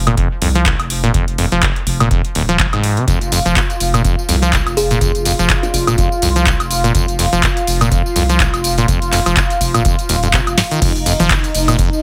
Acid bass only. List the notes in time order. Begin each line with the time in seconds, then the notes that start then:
0.07 A#2
0.17 F2
0.42 F2
0.55 F3
0.66 F1
1.04 A#2
1.14 F2
1.38 F2
1.52 F3
1.63 F1
2.00 A#2
2.11 F2
2.35 D#2
2.49 F3
2.73 G#2
2.97 C3
3.08 F2
3.32 F2
3.46 F3
3.56 F2
3.94 A#2
4.04 F2
4.29 F2
4.42 F3
4.53 F2
4.91 A#2
5.01 F2
5.26 F2
5.39 F3
5.50 F2
5.88 A#2
5.98 F2
6.22 F2
6.36 F3
6.46 F2
6.84 A#2
6.95 F2
7.19 F2
7.33 F3
7.43 F2
7.81 A#2
7.92 F2
8.16 F2
8.29 F3
8.40 F2
8.78 A#2
8.88 F2
9.13 F2
9.26 F3
9.37 F2
9.74 A#2
9.85 F2
10.09 D#2
10.23 F2
10.34 C3
10.58 G#2
10.71 D#3
10.82 F2
11.06 F2
11.20 F3
11.30 F2
11.68 A#2
11.79 F2